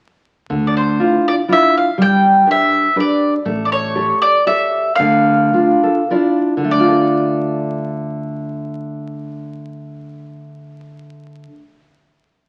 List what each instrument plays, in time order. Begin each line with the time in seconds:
0.50 upright bass D2, nylon-string guitar D3
0.67 mandolin D5
0.77 mandolin C5
0.99 nylon-string guitar D4 E4 F4
1.28 mandolin D5
1.48 nylon-string guitar D4 E4 F4
1.53 mandolin E5
1.78 mandolin F5
1.98 upright bass G1, nylon-string guitar G3, mandolin G5
2.46 nylon-string guitar D4 G4 B4
2.51 mandolin E5
2.96 nylon-string guitar D4 G4 B4
3.00 mandolin D5
3.45 upright bass A1, nylon-string guitar A3
3.65 mandolin D5
3.72 mandolin C#5
3.95 nylon-string guitar G4 A4 C#5
4.22 mandolin D5
4.46 nylon-string guitar G4 A4 C#5, mandolin E5
4.96 upright bass D2, mandolin F5
5.00 nylon-string guitar D3
5.53 nylon-string guitar D4 F4
5.83 nylon-string guitar A4
6.10 nylon-string guitar D4 E4 F4 D5
6.57 nylon-string guitar D3
6.64 nylon-string guitar A3
6.71 upright bass D2, nylon-string guitar D4, mandolin D5
6.80 nylon-string guitar F4
6.88 nylon-string guitar A4